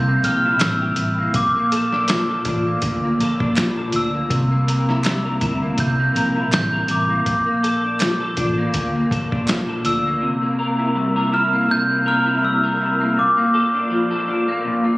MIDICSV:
0, 0, Header, 1, 5, 480
1, 0, Start_track
1, 0, Tempo, 739827
1, 873, Time_signature, 4, 2, 24, 8
1, 9718, End_track
2, 0, Start_track
2, 0, Title_t, "Glockenspiel"
2, 0, Program_c, 0, 9
2, 0, Note_on_c, 0, 91, 104
2, 158, Note_on_c, 0, 89, 100
2, 161, Note_off_c, 0, 91, 0
2, 397, Note_on_c, 0, 88, 91
2, 402, Note_off_c, 0, 89, 0
2, 880, Note_on_c, 0, 86, 81
2, 889, Note_off_c, 0, 88, 0
2, 1811, Note_off_c, 0, 86, 0
2, 2570, Note_on_c, 0, 88, 94
2, 3763, Note_on_c, 0, 91, 97
2, 3797, Note_off_c, 0, 88, 0
2, 4234, Note_off_c, 0, 91, 0
2, 4242, Note_on_c, 0, 91, 109
2, 4484, Note_on_c, 0, 86, 80
2, 4485, Note_off_c, 0, 91, 0
2, 5412, Note_off_c, 0, 86, 0
2, 6397, Note_on_c, 0, 88, 99
2, 7356, Note_on_c, 0, 89, 86
2, 7381, Note_off_c, 0, 88, 0
2, 7599, Note_off_c, 0, 89, 0
2, 7600, Note_on_c, 0, 91, 120
2, 7837, Note_on_c, 0, 89, 101
2, 7841, Note_off_c, 0, 91, 0
2, 8026, Note_off_c, 0, 89, 0
2, 8034, Note_on_c, 0, 89, 64
2, 8071, Note_off_c, 0, 89, 0
2, 8075, Note_on_c, 0, 88, 88
2, 8557, Note_on_c, 0, 86, 80
2, 8565, Note_off_c, 0, 88, 0
2, 9484, Note_off_c, 0, 86, 0
2, 9718, End_track
3, 0, Start_track
3, 0, Title_t, "Clean electric guitar"
3, 0, Program_c, 1, 27
3, 0, Note_on_c, 1, 48, 87
3, 0, Note_on_c, 1, 55, 62
3, 0, Note_on_c, 1, 64, 64
3, 0, Note_on_c, 1, 67, 60
3, 53, Note_on_c, 1, 58, 55
3, 153, Note_off_c, 1, 67, 0
3, 160, Note_on_c, 1, 67, 62
3, 283, Note_off_c, 1, 64, 0
3, 291, Note_on_c, 1, 64, 69
3, 389, Note_off_c, 1, 55, 0
3, 397, Note_on_c, 1, 55, 68
3, 521, Note_off_c, 1, 67, 0
3, 529, Note_on_c, 1, 67, 65
3, 633, Note_off_c, 1, 64, 0
3, 641, Note_on_c, 1, 64, 57
3, 766, Note_off_c, 1, 58, 0
3, 769, Note_on_c, 1, 58, 56
3, 927, Note_off_c, 1, 48, 0
3, 928, Note_off_c, 1, 55, 0
3, 928, Note_off_c, 1, 67, 0
3, 930, Note_off_c, 1, 64, 0
3, 1009, Note_off_c, 1, 58, 0
3, 1011, Note_on_c, 1, 58, 62
3, 1115, Note_on_c, 1, 69, 69
3, 1249, Note_on_c, 1, 62, 56
3, 1353, Note_on_c, 1, 53, 69
3, 1480, Note_off_c, 1, 69, 0
3, 1488, Note_on_c, 1, 69, 68
3, 1591, Note_off_c, 1, 62, 0
3, 1598, Note_on_c, 1, 62, 59
3, 1727, Note_off_c, 1, 58, 0
3, 1729, Note_on_c, 1, 58, 57
3, 1838, Note_on_c, 1, 46, 79
3, 1968, Note_off_c, 1, 58, 0
3, 1971, Note_on_c, 1, 58, 63
3, 2073, Note_off_c, 1, 69, 0
3, 2081, Note_on_c, 1, 69, 63
3, 2203, Note_off_c, 1, 62, 0
3, 2210, Note_on_c, 1, 62, 68
3, 2309, Note_off_c, 1, 53, 0
3, 2317, Note_on_c, 1, 53, 73
3, 2440, Note_off_c, 1, 69, 0
3, 2448, Note_on_c, 1, 69, 64
3, 2549, Note_off_c, 1, 62, 0
3, 2557, Note_on_c, 1, 62, 53
3, 2684, Note_off_c, 1, 58, 0
3, 2687, Note_on_c, 1, 58, 61
3, 2793, Note_on_c, 1, 48, 85
3, 2848, Note_off_c, 1, 53, 0
3, 2848, Note_off_c, 1, 62, 0
3, 2848, Note_off_c, 1, 69, 0
3, 2849, Note_off_c, 1, 46, 0
3, 2923, Note_off_c, 1, 58, 0
3, 2926, Note_on_c, 1, 58, 60
3, 3033, Note_on_c, 1, 70, 61
3, 3170, Note_on_c, 1, 64, 56
3, 3279, Note_on_c, 1, 55, 64
3, 3405, Note_off_c, 1, 70, 0
3, 3408, Note_on_c, 1, 70, 69
3, 3508, Note_off_c, 1, 64, 0
3, 3516, Note_on_c, 1, 64, 66
3, 3644, Note_off_c, 1, 58, 0
3, 3647, Note_on_c, 1, 58, 64
3, 3749, Note_off_c, 1, 48, 0
3, 3757, Note_on_c, 1, 48, 83
3, 3885, Note_off_c, 1, 58, 0
3, 3888, Note_on_c, 1, 58, 62
3, 3990, Note_off_c, 1, 70, 0
3, 3993, Note_on_c, 1, 70, 55
3, 4117, Note_off_c, 1, 64, 0
3, 4124, Note_on_c, 1, 64, 69
3, 4225, Note_off_c, 1, 55, 0
3, 4233, Note_on_c, 1, 55, 72
3, 4361, Note_off_c, 1, 70, 0
3, 4364, Note_on_c, 1, 70, 71
3, 4468, Note_off_c, 1, 64, 0
3, 4475, Note_on_c, 1, 64, 59
3, 4600, Note_off_c, 1, 58, 0
3, 4603, Note_on_c, 1, 58, 58
3, 4766, Note_off_c, 1, 55, 0
3, 4767, Note_off_c, 1, 48, 0
3, 4767, Note_off_c, 1, 64, 0
3, 4840, Note_off_c, 1, 58, 0
3, 4842, Note_on_c, 1, 58, 68
3, 4949, Note_off_c, 1, 70, 0
3, 4952, Note_on_c, 1, 69, 64
3, 5085, Note_on_c, 1, 62, 49
3, 5191, Note_on_c, 1, 53, 62
3, 5314, Note_off_c, 1, 69, 0
3, 5322, Note_on_c, 1, 69, 65
3, 5424, Note_off_c, 1, 62, 0
3, 5432, Note_on_c, 1, 62, 69
3, 5562, Note_off_c, 1, 58, 0
3, 5565, Note_on_c, 1, 58, 64
3, 5673, Note_on_c, 1, 46, 87
3, 5803, Note_off_c, 1, 58, 0
3, 5806, Note_on_c, 1, 58, 60
3, 5907, Note_off_c, 1, 69, 0
3, 5915, Note_on_c, 1, 69, 58
3, 6038, Note_off_c, 1, 62, 0
3, 6046, Note_on_c, 1, 62, 61
3, 6144, Note_off_c, 1, 53, 0
3, 6152, Note_on_c, 1, 53, 68
3, 6276, Note_off_c, 1, 69, 0
3, 6284, Note_on_c, 1, 69, 60
3, 6380, Note_off_c, 1, 62, 0
3, 6388, Note_on_c, 1, 62, 56
3, 6520, Note_off_c, 1, 58, 0
3, 6522, Note_on_c, 1, 58, 58
3, 6629, Note_on_c, 1, 48, 85
3, 6682, Note_off_c, 1, 62, 0
3, 6684, Note_off_c, 1, 46, 0
3, 6684, Note_off_c, 1, 53, 0
3, 6684, Note_off_c, 1, 69, 0
3, 6754, Note_off_c, 1, 58, 0
3, 6757, Note_on_c, 1, 58, 62
3, 6869, Note_on_c, 1, 70, 72
3, 6998, Note_on_c, 1, 64, 49
3, 7103, Note_on_c, 1, 55, 68
3, 7238, Note_off_c, 1, 70, 0
3, 7240, Note_on_c, 1, 70, 67
3, 7339, Note_off_c, 1, 64, 0
3, 7347, Note_on_c, 1, 64, 67
3, 7478, Note_off_c, 1, 58, 0
3, 7481, Note_on_c, 1, 58, 64
3, 7574, Note_off_c, 1, 48, 0
3, 7582, Note_on_c, 1, 48, 84
3, 7713, Note_off_c, 1, 58, 0
3, 7715, Note_on_c, 1, 58, 61
3, 7822, Note_off_c, 1, 70, 0
3, 7825, Note_on_c, 1, 70, 68
3, 7947, Note_off_c, 1, 64, 0
3, 7955, Note_on_c, 1, 64, 66
3, 8055, Note_off_c, 1, 55, 0
3, 8062, Note_on_c, 1, 55, 65
3, 8195, Note_off_c, 1, 70, 0
3, 8197, Note_on_c, 1, 70, 67
3, 8302, Note_off_c, 1, 64, 0
3, 8309, Note_on_c, 1, 64, 59
3, 8434, Note_off_c, 1, 58, 0
3, 8436, Note_on_c, 1, 58, 61
3, 8544, Note_on_c, 1, 46, 86
3, 8596, Note_off_c, 1, 48, 0
3, 8597, Note_off_c, 1, 55, 0
3, 8601, Note_off_c, 1, 64, 0
3, 8672, Note_off_c, 1, 58, 0
3, 8675, Note_on_c, 1, 58, 63
3, 8781, Note_off_c, 1, 70, 0
3, 8784, Note_on_c, 1, 69, 65
3, 8915, Note_on_c, 1, 62, 52
3, 9020, Note_on_c, 1, 53, 75
3, 9145, Note_off_c, 1, 69, 0
3, 9153, Note_on_c, 1, 69, 68
3, 9256, Note_off_c, 1, 62, 0
3, 9263, Note_on_c, 1, 62, 60
3, 9391, Note_off_c, 1, 58, 0
3, 9393, Note_on_c, 1, 58, 57
3, 9496, Note_off_c, 1, 46, 0
3, 9504, Note_on_c, 1, 46, 89
3, 9628, Note_off_c, 1, 58, 0
3, 9630, Note_on_c, 1, 58, 64
3, 9718, Note_off_c, 1, 46, 0
3, 9718, Note_off_c, 1, 53, 0
3, 9718, Note_off_c, 1, 58, 0
3, 9718, Note_off_c, 1, 62, 0
3, 9718, Note_off_c, 1, 69, 0
3, 9718, End_track
4, 0, Start_track
4, 0, Title_t, "Fingered electric bass"
4, 0, Program_c, 2, 33
4, 0, Note_on_c, 2, 36, 84
4, 103, Note_off_c, 2, 36, 0
4, 151, Note_on_c, 2, 34, 81
4, 343, Note_off_c, 2, 34, 0
4, 391, Note_on_c, 2, 33, 92
4, 583, Note_off_c, 2, 33, 0
4, 631, Note_on_c, 2, 33, 88
4, 824, Note_off_c, 2, 33, 0
4, 870, Note_on_c, 2, 34, 107
4, 1566, Note_off_c, 2, 34, 0
4, 1590, Note_on_c, 2, 33, 98
4, 1784, Note_off_c, 2, 33, 0
4, 1831, Note_on_c, 2, 38, 95
4, 2024, Note_off_c, 2, 38, 0
4, 2070, Note_on_c, 2, 34, 83
4, 2264, Note_off_c, 2, 34, 0
4, 2315, Note_on_c, 2, 34, 90
4, 2506, Note_off_c, 2, 34, 0
4, 2550, Note_on_c, 2, 38, 99
4, 2744, Note_off_c, 2, 38, 0
4, 2792, Note_on_c, 2, 36, 99
4, 3487, Note_off_c, 2, 36, 0
4, 3511, Note_on_c, 2, 38, 103
4, 3704, Note_off_c, 2, 38, 0
4, 3752, Note_on_c, 2, 36, 84
4, 3945, Note_off_c, 2, 36, 0
4, 3992, Note_on_c, 2, 34, 89
4, 4185, Note_off_c, 2, 34, 0
4, 4231, Note_on_c, 2, 33, 101
4, 4424, Note_off_c, 2, 33, 0
4, 4474, Note_on_c, 2, 33, 99
4, 4666, Note_off_c, 2, 33, 0
4, 4713, Note_on_c, 2, 34, 98
4, 5406, Note_off_c, 2, 34, 0
4, 5431, Note_on_c, 2, 33, 96
4, 5623, Note_off_c, 2, 33, 0
4, 5673, Note_on_c, 2, 38, 95
4, 5864, Note_off_c, 2, 38, 0
4, 5912, Note_on_c, 2, 34, 83
4, 6104, Note_off_c, 2, 34, 0
4, 6151, Note_on_c, 2, 34, 94
4, 6343, Note_off_c, 2, 34, 0
4, 6392, Note_on_c, 2, 38, 93
4, 6583, Note_off_c, 2, 38, 0
4, 9718, End_track
5, 0, Start_track
5, 0, Title_t, "Drums"
5, 155, Note_on_c, 9, 42, 65
5, 220, Note_off_c, 9, 42, 0
5, 391, Note_on_c, 9, 39, 77
5, 391, Note_on_c, 9, 42, 77
5, 397, Note_on_c, 9, 38, 123
5, 455, Note_off_c, 9, 42, 0
5, 456, Note_off_c, 9, 39, 0
5, 462, Note_off_c, 9, 38, 0
5, 624, Note_on_c, 9, 42, 83
5, 689, Note_off_c, 9, 42, 0
5, 869, Note_on_c, 9, 42, 90
5, 871, Note_on_c, 9, 36, 101
5, 934, Note_off_c, 9, 42, 0
5, 936, Note_off_c, 9, 36, 0
5, 1116, Note_on_c, 9, 42, 79
5, 1181, Note_off_c, 9, 42, 0
5, 1249, Note_on_c, 9, 38, 31
5, 1314, Note_off_c, 9, 38, 0
5, 1349, Note_on_c, 9, 42, 82
5, 1354, Note_on_c, 9, 39, 83
5, 1361, Note_on_c, 9, 38, 111
5, 1413, Note_off_c, 9, 42, 0
5, 1419, Note_off_c, 9, 39, 0
5, 1426, Note_off_c, 9, 38, 0
5, 1589, Note_on_c, 9, 42, 81
5, 1592, Note_on_c, 9, 36, 91
5, 1654, Note_off_c, 9, 42, 0
5, 1657, Note_off_c, 9, 36, 0
5, 1828, Note_on_c, 9, 42, 87
5, 1833, Note_on_c, 9, 36, 90
5, 1893, Note_off_c, 9, 42, 0
5, 1897, Note_off_c, 9, 36, 0
5, 2079, Note_on_c, 9, 42, 59
5, 2144, Note_off_c, 9, 42, 0
5, 2208, Note_on_c, 9, 36, 101
5, 2273, Note_off_c, 9, 36, 0
5, 2313, Note_on_c, 9, 39, 83
5, 2315, Note_on_c, 9, 42, 84
5, 2321, Note_on_c, 9, 38, 112
5, 2378, Note_off_c, 9, 39, 0
5, 2379, Note_off_c, 9, 42, 0
5, 2386, Note_off_c, 9, 38, 0
5, 2546, Note_on_c, 9, 42, 81
5, 2611, Note_off_c, 9, 42, 0
5, 2792, Note_on_c, 9, 36, 114
5, 2794, Note_on_c, 9, 42, 94
5, 2857, Note_off_c, 9, 36, 0
5, 2859, Note_off_c, 9, 42, 0
5, 3038, Note_on_c, 9, 42, 77
5, 3103, Note_off_c, 9, 42, 0
5, 3172, Note_on_c, 9, 38, 32
5, 3237, Note_off_c, 9, 38, 0
5, 3271, Note_on_c, 9, 39, 78
5, 3272, Note_on_c, 9, 42, 83
5, 3284, Note_on_c, 9, 38, 116
5, 3336, Note_off_c, 9, 39, 0
5, 3337, Note_off_c, 9, 42, 0
5, 3349, Note_off_c, 9, 38, 0
5, 3511, Note_on_c, 9, 42, 68
5, 3513, Note_on_c, 9, 36, 94
5, 3576, Note_off_c, 9, 42, 0
5, 3578, Note_off_c, 9, 36, 0
5, 3748, Note_on_c, 9, 42, 80
5, 3753, Note_on_c, 9, 36, 87
5, 3813, Note_off_c, 9, 42, 0
5, 3818, Note_off_c, 9, 36, 0
5, 3997, Note_on_c, 9, 42, 65
5, 4062, Note_off_c, 9, 42, 0
5, 4233, Note_on_c, 9, 39, 80
5, 4234, Note_on_c, 9, 42, 83
5, 4241, Note_on_c, 9, 38, 112
5, 4298, Note_off_c, 9, 39, 0
5, 4299, Note_off_c, 9, 42, 0
5, 4306, Note_off_c, 9, 38, 0
5, 4466, Note_on_c, 9, 42, 86
5, 4531, Note_off_c, 9, 42, 0
5, 4712, Note_on_c, 9, 36, 107
5, 4712, Note_on_c, 9, 42, 82
5, 4777, Note_off_c, 9, 36, 0
5, 4777, Note_off_c, 9, 42, 0
5, 4957, Note_on_c, 9, 42, 66
5, 5022, Note_off_c, 9, 42, 0
5, 5190, Note_on_c, 9, 42, 85
5, 5192, Note_on_c, 9, 39, 83
5, 5202, Note_on_c, 9, 38, 127
5, 5255, Note_off_c, 9, 42, 0
5, 5257, Note_off_c, 9, 39, 0
5, 5267, Note_off_c, 9, 38, 0
5, 5430, Note_on_c, 9, 42, 78
5, 5433, Note_on_c, 9, 36, 100
5, 5494, Note_off_c, 9, 42, 0
5, 5498, Note_off_c, 9, 36, 0
5, 5669, Note_on_c, 9, 42, 91
5, 5674, Note_on_c, 9, 36, 81
5, 5734, Note_off_c, 9, 42, 0
5, 5738, Note_off_c, 9, 36, 0
5, 5912, Note_on_c, 9, 36, 85
5, 5919, Note_on_c, 9, 42, 58
5, 5977, Note_off_c, 9, 36, 0
5, 5983, Note_off_c, 9, 42, 0
5, 6049, Note_on_c, 9, 36, 97
5, 6113, Note_off_c, 9, 36, 0
5, 6150, Note_on_c, 9, 39, 76
5, 6153, Note_on_c, 9, 42, 73
5, 6159, Note_on_c, 9, 38, 112
5, 6215, Note_off_c, 9, 39, 0
5, 6218, Note_off_c, 9, 42, 0
5, 6224, Note_off_c, 9, 38, 0
5, 6389, Note_on_c, 9, 42, 77
5, 6454, Note_off_c, 9, 42, 0
5, 9718, End_track
0, 0, End_of_file